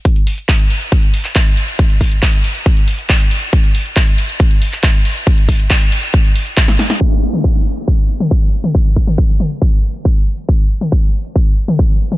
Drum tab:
HH |xxoxxxoxxxoxxxox|xxoxxxoxxxoxxxox|xxoxxxoxxxoxxxox|xxoxxxoxxxoxxxox|
CP |----x------xx---|----x-------x---|----x------xx---|----x-------x---|
SD |----------------|----------------|----------------|-------------ooo|
T2 |----------------|----------------|----------------|----------------|
BD |o---o---o---o---|o-o-o---o---o---|o---o---o---o---|o-o-o---o---o---|

HH |x-xxxxxxxxxxxxxx|xxxxxxxxxxxxxxxx|xxxxxxxxxxxxxxxx|
CP |----------------|----------------|----------------|
SD |----------------|----------------|----------------|
T2 |---o-------o---o|---o--o---------|---o-------o---o|
BD |o---o---o---o---|o-o-o---o---o---|o---o---o---o---|